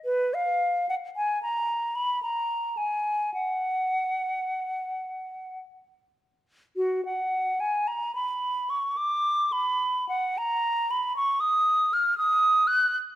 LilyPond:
\new Staff \with { instrumentName = "Flute" } { \time 3/4 \key fis \major \tempo 4 = 54 b'16 eis''8 fis''16 gis''16 ais''8 b''16 ais''8 gis''8 | fis''2 r4 | fis'16 fis''8 gis''16 ais''16 b''8 cis'''16 d'''8 b''8 | fis''16 ais''8 b''16 cis'''16 dis'''8 eis'''16 dis'''8 fis'''16 r16 | }